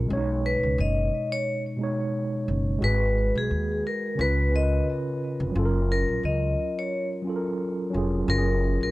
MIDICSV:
0, 0, Header, 1, 4, 480
1, 0, Start_track
1, 0, Key_signature, 6, "major"
1, 0, Tempo, 681818
1, 64, Time_signature, 4, 2, 24, 8
1, 6273, End_track
2, 0, Start_track
2, 0, Title_t, "Vibraphone"
2, 0, Program_c, 0, 11
2, 323, Note_on_c, 0, 71, 83
2, 531, Note_off_c, 0, 71, 0
2, 567, Note_on_c, 0, 75, 70
2, 907, Note_off_c, 0, 75, 0
2, 931, Note_on_c, 0, 73, 79
2, 1141, Note_off_c, 0, 73, 0
2, 2000, Note_on_c, 0, 71, 91
2, 2343, Note_off_c, 0, 71, 0
2, 2377, Note_on_c, 0, 68, 76
2, 2694, Note_off_c, 0, 68, 0
2, 2723, Note_on_c, 0, 70, 70
2, 2954, Note_off_c, 0, 70, 0
2, 2963, Note_on_c, 0, 71, 88
2, 3171, Note_off_c, 0, 71, 0
2, 3208, Note_on_c, 0, 75, 78
2, 3413, Note_off_c, 0, 75, 0
2, 4167, Note_on_c, 0, 70, 79
2, 4373, Note_off_c, 0, 70, 0
2, 4401, Note_on_c, 0, 75, 69
2, 4766, Note_off_c, 0, 75, 0
2, 4779, Note_on_c, 0, 73, 71
2, 4985, Note_off_c, 0, 73, 0
2, 5842, Note_on_c, 0, 70, 94
2, 6185, Note_off_c, 0, 70, 0
2, 6217, Note_on_c, 0, 70, 73
2, 6273, Note_off_c, 0, 70, 0
2, 6273, End_track
3, 0, Start_track
3, 0, Title_t, "Tine electric piano"
3, 0, Program_c, 1, 4
3, 0, Control_c, 1, 64, 127
3, 0, Note_on_c, 1, 54, 65
3, 0, Note_on_c, 1, 61, 56
3, 0, Note_on_c, 1, 65, 60
3, 0, Note_on_c, 1, 68, 56
3, 0, Note_on_c, 1, 70, 77
3, 43, Note_on_c, 1, 47, 83
3, 60, Note_on_c, 1, 56, 80
3, 72, Control_c, 1, 64, 0
3, 73, Note_off_c, 1, 54, 0
3, 73, Note_off_c, 1, 61, 0
3, 75, Note_off_c, 1, 65, 0
3, 76, Note_on_c, 1, 61, 67
3, 78, Note_off_c, 1, 70, 0
3, 80, Note_off_c, 1, 68, 0
3, 92, Note_on_c, 1, 73, 95
3, 121, Note_off_c, 1, 61, 0
3, 121, Note_on_c, 1, 63, 78
3, 176, Control_c, 1, 64, 127
3, 785, Note_off_c, 1, 47, 0
3, 793, Note_off_c, 1, 56, 0
3, 809, Note_off_c, 1, 73, 0
3, 824, Note_off_c, 1, 63, 0
3, 1240, Note_on_c, 1, 47, 70
3, 1259, Note_on_c, 1, 56, 68
3, 1276, Note_on_c, 1, 63, 68
3, 1292, Note_on_c, 1, 73, 88
3, 1807, Note_off_c, 1, 47, 0
3, 1816, Note_off_c, 1, 56, 0
3, 1825, Note_off_c, 1, 63, 0
3, 1833, Note_off_c, 1, 73, 0
3, 1962, Note_on_c, 1, 56, 81
3, 1978, Note_on_c, 1, 66, 77
3, 1993, Control_c, 1, 64, 0
3, 1996, Note_on_c, 1, 68, 73
3, 2013, Note_on_c, 1, 71, 86
3, 2102, Control_c, 1, 64, 127
3, 2704, Note_off_c, 1, 56, 0
3, 2712, Note_off_c, 1, 66, 0
3, 2721, Note_off_c, 1, 68, 0
3, 2730, Note_off_c, 1, 71, 0
3, 2924, Note_on_c, 1, 49, 83
3, 2941, Note_on_c, 1, 61, 78
3, 2954, Control_c, 1, 64, 0
3, 2958, Note_on_c, 1, 65, 79
3, 2975, Note_on_c, 1, 71, 92
3, 3067, Control_c, 1, 64, 127
3, 3131, Note_off_c, 1, 49, 0
3, 3140, Note_off_c, 1, 61, 0
3, 3148, Note_off_c, 1, 65, 0
3, 3157, Note_off_c, 1, 71, 0
3, 3163, Note_on_c, 1, 49, 65
3, 3180, Note_on_c, 1, 61, 57
3, 3198, Note_on_c, 1, 65, 56
3, 3212, Note_on_c, 1, 70, 58
3, 3249, Note_off_c, 1, 70, 0
3, 3259, Note_on_c, 1, 71, 74
3, 3728, Note_off_c, 1, 49, 0
3, 3737, Note_off_c, 1, 61, 0
3, 3746, Note_off_c, 1, 65, 0
3, 3777, Note_off_c, 1, 71, 0
3, 3883, Note_on_c, 1, 54, 85
3, 3901, Note_on_c, 1, 61, 73
3, 3913, Control_c, 1, 64, 0
3, 3917, Note_on_c, 1, 65, 82
3, 3934, Note_on_c, 1, 69, 77
3, 3970, Note_off_c, 1, 69, 0
3, 3980, Note_on_c, 1, 70, 104
3, 4046, Control_c, 1, 64, 127
3, 4625, Note_off_c, 1, 54, 0
3, 4634, Note_off_c, 1, 61, 0
3, 4642, Note_off_c, 1, 65, 0
3, 4673, Note_off_c, 1, 70, 0
3, 5085, Note_on_c, 1, 54, 70
3, 5101, Note_on_c, 1, 61, 63
3, 5119, Note_on_c, 1, 65, 59
3, 5135, Note_on_c, 1, 69, 62
3, 5170, Note_off_c, 1, 69, 0
3, 5181, Note_on_c, 1, 70, 76
3, 5473, Note_off_c, 1, 54, 0
3, 5480, Note_off_c, 1, 61, 0
3, 5489, Note_off_c, 1, 65, 0
3, 5520, Note_off_c, 1, 70, 0
3, 5563, Note_on_c, 1, 54, 80
3, 5581, Note_on_c, 1, 61, 72
3, 5596, Note_on_c, 1, 65, 69
3, 5615, Note_on_c, 1, 68, 86
3, 5762, Note_off_c, 1, 54, 0
3, 5772, Note_off_c, 1, 61, 0
3, 5779, Note_off_c, 1, 65, 0
3, 5789, Note_off_c, 1, 68, 0
3, 5805, Note_on_c, 1, 54, 73
3, 5823, Note_on_c, 1, 61, 66
3, 5839, Note_on_c, 1, 65, 68
3, 5856, Note_on_c, 1, 66, 67
3, 5891, Note_off_c, 1, 66, 0
3, 5901, Note_on_c, 1, 68, 81
3, 6273, Note_off_c, 1, 54, 0
3, 6273, Note_off_c, 1, 61, 0
3, 6273, Note_off_c, 1, 65, 0
3, 6273, Note_off_c, 1, 68, 0
3, 6273, End_track
4, 0, Start_track
4, 0, Title_t, "Upright bass"
4, 0, Program_c, 2, 32
4, 73, Note_on_c, 2, 35, 99
4, 402, Note_off_c, 2, 35, 0
4, 444, Note_on_c, 2, 37, 80
4, 536, Note_off_c, 2, 37, 0
4, 551, Note_on_c, 2, 30, 97
4, 762, Note_off_c, 2, 30, 0
4, 1746, Note_on_c, 2, 30, 89
4, 1959, Note_off_c, 2, 30, 0
4, 1986, Note_on_c, 2, 32, 99
4, 2318, Note_off_c, 2, 32, 0
4, 2361, Note_on_c, 2, 35, 97
4, 2454, Note_off_c, 2, 35, 0
4, 2468, Note_on_c, 2, 39, 84
4, 2680, Note_off_c, 2, 39, 0
4, 2948, Note_on_c, 2, 37, 101
4, 3375, Note_off_c, 2, 37, 0
4, 3801, Note_on_c, 2, 29, 100
4, 3895, Note_off_c, 2, 29, 0
4, 3911, Note_on_c, 2, 30, 97
4, 4241, Note_off_c, 2, 30, 0
4, 4284, Note_on_c, 2, 34, 75
4, 4376, Note_off_c, 2, 34, 0
4, 4388, Note_on_c, 2, 37, 88
4, 4601, Note_off_c, 2, 37, 0
4, 5591, Note_on_c, 2, 29, 83
4, 5802, Note_off_c, 2, 29, 0
4, 5829, Note_on_c, 2, 30, 104
4, 6160, Note_off_c, 2, 30, 0
4, 6273, End_track
0, 0, End_of_file